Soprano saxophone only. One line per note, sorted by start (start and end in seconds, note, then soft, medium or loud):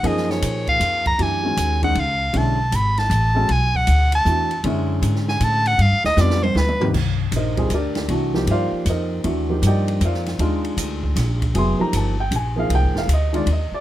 0.07 0.32 D#5 medium
0.31 0.68 C#5 medium
0.69 1.06 F5 loud
1.07 1.24 A#5 loud
1.22 1.84 G#5 medium
1.84 2.01 F#5 medium
2.00 2.39 F5 medium
2.37 2.77 A5 medium
2.75 3.00 B5 medium
2.99 3.53 A5 loud
3.52 3.77 G#5 medium
3.76 4.13 F#5 loud
4.15 4.62 A5 loud
5.29 5.45 G#5 medium
5.44 5.69 A5 loud
5.67 5.83 F#5 loud
5.82 6.05 F5 loud
6.06 6.22 D#5 loud
6.21 6.45 D5 medium
6.43 6.59 C5 medium
6.57 6.88 B4 medium